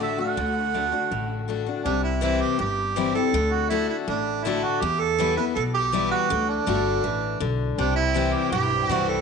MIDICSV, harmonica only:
0, 0, Header, 1, 2, 480
1, 0, Start_track
1, 0, Tempo, 370599
1, 481, Time_signature, 4, 2, 24, 8
1, 11931, End_track
2, 0, Start_track
2, 0, Title_t, "Harmonica"
2, 0, Program_c, 0, 22
2, 33, Note_on_c, 0, 76, 87
2, 241, Note_off_c, 0, 76, 0
2, 262, Note_on_c, 0, 78, 96
2, 1881, Note_off_c, 0, 78, 0
2, 2386, Note_on_c, 0, 62, 97
2, 2617, Note_off_c, 0, 62, 0
2, 2633, Note_on_c, 0, 64, 80
2, 2861, Note_off_c, 0, 64, 0
2, 2887, Note_on_c, 0, 64, 105
2, 3124, Note_on_c, 0, 67, 95
2, 3143, Note_off_c, 0, 64, 0
2, 3357, Note_off_c, 0, 67, 0
2, 3365, Note_on_c, 0, 67, 91
2, 4033, Note_off_c, 0, 67, 0
2, 4076, Note_on_c, 0, 69, 100
2, 4557, Note_on_c, 0, 66, 105
2, 4577, Note_off_c, 0, 69, 0
2, 4775, Note_off_c, 0, 66, 0
2, 4782, Note_on_c, 0, 64, 101
2, 5015, Note_off_c, 0, 64, 0
2, 5037, Note_on_c, 0, 64, 78
2, 5146, Note_off_c, 0, 64, 0
2, 5288, Note_on_c, 0, 62, 90
2, 5750, Note_on_c, 0, 64, 93
2, 5769, Note_off_c, 0, 62, 0
2, 5999, Note_on_c, 0, 66, 102
2, 6018, Note_off_c, 0, 64, 0
2, 6228, Note_on_c, 0, 67, 115
2, 6247, Note_off_c, 0, 66, 0
2, 6478, Note_on_c, 0, 69, 116
2, 6497, Note_off_c, 0, 67, 0
2, 6941, Note_off_c, 0, 69, 0
2, 6948, Note_on_c, 0, 71, 98
2, 7059, Note_off_c, 0, 71, 0
2, 7184, Note_on_c, 0, 69, 103
2, 7296, Note_off_c, 0, 69, 0
2, 7439, Note_on_c, 0, 67, 102
2, 7886, Note_off_c, 0, 67, 0
2, 7912, Note_on_c, 0, 66, 104
2, 8362, Note_off_c, 0, 66, 0
2, 8404, Note_on_c, 0, 62, 100
2, 9789, Note_off_c, 0, 62, 0
2, 10075, Note_on_c, 0, 62, 101
2, 10300, Note_off_c, 0, 62, 0
2, 10308, Note_on_c, 0, 64, 101
2, 10795, Note_on_c, 0, 67, 92
2, 10814, Note_off_c, 0, 64, 0
2, 11023, Note_off_c, 0, 67, 0
2, 11030, Note_on_c, 0, 67, 107
2, 11522, Note_off_c, 0, 67, 0
2, 11522, Note_on_c, 0, 66, 107
2, 11761, Note_on_c, 0, 69, 104
2, 11780, Note_off_c, 0, 66, 0
2, 11931, Note_off_c, 0, 69, 0
2, 11931, End_track
0, 0, End_of_file